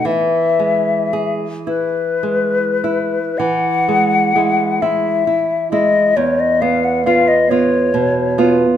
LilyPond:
<<
  \new Staff \with { instrumentName = "Flute" } { \time 6/8 \key e \major \tempo 4. = 43 e''4. b'4. | fis''4. e''4 dis''8 | cis''16 dis''16 eis''16 fis''16 eis''16 dis''16 cis''4~ cis''16 r16 | }
  \new Staff \with { instrumentName = "Nylon-string guitar" } { \time 6/8 \key e \major e8 gis8 gis'8 e'8 gis8 e'8 | e8 gis8 <gis e'>8 <gis e'>8 e'8 <gis e'>8 | e,8 b8 <b eis'>8 <b eis'>8 b,8 <b eis'>8 | }
>>